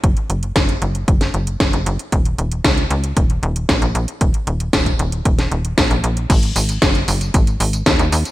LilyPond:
<<
  \new Staff \with { instrumentName = "Analog synth bass" } { \clef bass \time 4/4 \key dis \minor \tempo 4 = 115 fis,,16 r16 fis,,8 fis,,8 fis,,8 fis,,8 fis,,8 fis,,16 fis,,16 fis,,16 r16 | dis,,8 dis,,8 cis,8 cis,8 dis,,8 dis,,8 ais,,16 ais,,16 ais,,16 r16 | dis,,16 r16 dis,,8 dis,,8 dis,,8 dis,,8 dis,,8 ais,,16 ais,,16 ais,,8 | gis,,8 gis,,8 fis,,8 fis,,8 gis,,8 gis,,8 dis,16 dis,16 dis,16 r16 | }
  \new DrumStaff \with { instrumentName = "Drums" } \drummode { \time 4/4 <hh bd>16 hh16 hh16 hh16 <hh bd sn>16 hh16 hh16 hh16 <hh bd>16 <hh sn>16 hh16 hh16 <hh bd sn>16 hh16 hh16 hh16 | <hh bd>16 hh16 hh16 hh16 <hh bd sn>16 hh16 hh16 hh16 <hh bd>16 hh16 hh16 hh16 <hh bd sn>16 hh16 hh16 hh16 | <hh bd>16 hh16 hh16 hh16 <hh bd sn>16 <hh bd>16 hh16 hh16 <hh bd>16 <hh sn>16 hh16 hh16 <hh bd sn>16 hh16 hh16 hh16 | <cymc hh bd tamb>16 <hh tamb>16 <hho tamb>16 <hh tamb>16 <hh bd sn tamb>16 <hh tamb>16 <hho tamb>16 <hh tamb>16 <hh bd tamb>16 <hh tamb>16 <hho tamb>16 <hh tamb>16 <hh bd sn tamb>16 <hh tamb>16 <hho tamb>16 <hh tamb>16 | }
>>